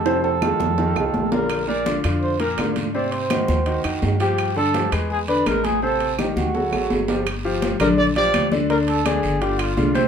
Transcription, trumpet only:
X:1
M:4/4
L:1/8
Q:1/4=167
K:Gm
V:1 name="Trumpet"
A A6 B- | B d2 z c B2 z | d c4 z2 G- | G A2 z ^G =B _B G |
A2 z ^F4 z | z3 B d d2 z | B A _A2 G F2 z |]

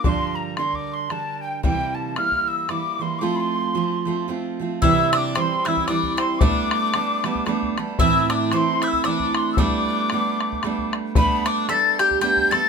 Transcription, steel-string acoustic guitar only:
X:1
M:3/4
L:1/8
Q:"Swing" 1/4=114
K:F
V:1 name="Steel-string acoustic guitar"
[G,,D,F,G,DB]2 [D,G,DB]2 [D,G,DB]2 | [C,E,G,B,E]2 [E,G,B,E]2 [E,G,B,E] [E,G,B,E] | [F,A,CF]2 [F,A,CF] [F,A,CF] [F,A,CF] [F,A,CF] | [K:C] [C,E,G,CE]2 [E,G,CE] [E,G,CE] [E,G,CE]2 |
[G,A,B,D]2 [G,A,B,D] [G,A,B,D] [G,A,B,D] [G,A,B,D] | [A,,E,A,CE]2 [E,A,CE]2 [E,A,CE]2 | [G,A,B,D]2 [G,A,B,D]2 [G,A,B,D]2 | [G,A,B,D]2 [G,A,B,D]2 [G,A,B,D] [G,A,B,D] |]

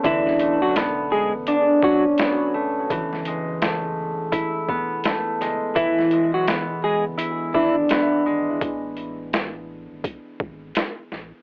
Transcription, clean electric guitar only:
X:1
M:4/4
L:1/16
Q:"Swing 16ths" 1/4=84
K:Emix
V:1 name="Clean electric guitar"
[E,E]3 [F,F] z2 [G,G] z3 [F,F] z4 z | z16 | [E,E]3 [F,F] z2 [G,G] z3 [E,E] z4 z | z16 |]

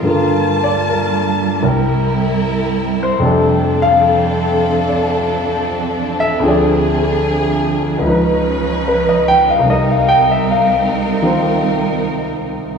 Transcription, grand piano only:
X:1
M:4/4
L:1/16
Q:"Swing" 1/4=75
K:Cphr
V:1 name="Grand piano"
c2 =d2 B6 z4 c2- | c2 f6 =d6 =e2 | =d6 z6 _c e g f | e f g =e f12 |]
V:2 name="Grand piano" clef=bass
[G,,=D,B,FB]8 [C,,C,G,=EB]8 | [F,,C,G,=D=A]16 | [=D,,=D,F,CA]8 [_D,,_D,F,E_c]8 | [C,,C,G,EB]8 [E,B,Fc]8 |]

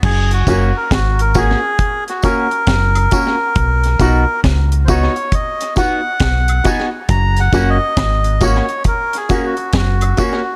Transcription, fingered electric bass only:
X:1
M:4/4
L:1/16
Q:"Swing 16ths" 1/4=68
K:F#
V:1 name="Fingered electric bass" clef=bass
F,,,2 F,,, z G,,,3 z4 z F,,,2 z2 | B,,,2 B,,, z C,,3 z4 z B,,,2 z2 | F,,,2 F,,, z G,,,3 z4 z F,,,2 z2 |]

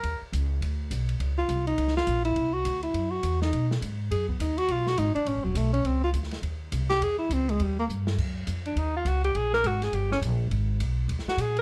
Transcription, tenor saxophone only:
X:1
M:4/4
L:1/8
Q:"Swing" 1/4=206
K:C#dor
V:1 name="Tenor saxophone"
A z6 z | z ^E2 D2 E2 =E- | E F2 E2 F2 D- | D z3 G B, D F |
^E F D =D C F, =A, C | ^B, ^E z4 z =G | G E ^B, G, =G, A, z2 | [K:Ebm] z8 |
z8 | z8 |]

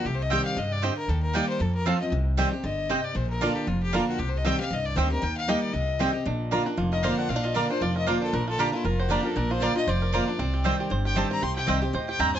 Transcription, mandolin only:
X:1
M:4/4
L:1/8
Q:"Swing" 1/4=232
K:Bb
V:1 name="Mandolin"
z2 [CGeg] z3 [CGeg] z | z2 [B,Geg] z3 [CFca] z | z2 [CGeg] z3 [CGeg] z | z2 [B,Fdb] z3 [B,Fdb] z |
z2 [CGeg] z3 [CGeg] z | z2 [B,Geg] z3 [CGeg] z | z2 [B,Fdb] z3 [B,Fdb] z | z2 [B,Fdb] z3 [B,Fdb] z |
z2 [B,Fdb] z3 [B,Fdb] z | z2 [B,Fdb] z3 [B,Fdb] z | z2 [CGeg] z3 [CGeg] z | z2 [CGeg] z3 [CGeg] z |]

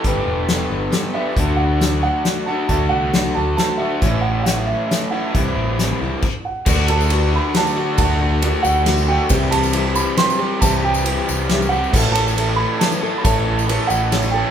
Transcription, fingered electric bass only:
X:1
M:3/4
L:1/16
Q:1/4=136
K:Dmix
V:1 name="Fingered electric bass" clef=bass
G,,,2 E,,,4 G,,,2 z4 | D,,8 z4 | D,,2 C,,4 D,,2 z4 | A,,,8 z4 |
C,,2 A,,,4 C,, z4 z | D,,8 z4 | D,,6 D,,6 | C,,8 z4 |
C,,6 C,,6 | A,,,8 z4 | A,,,6 A,,,6 |]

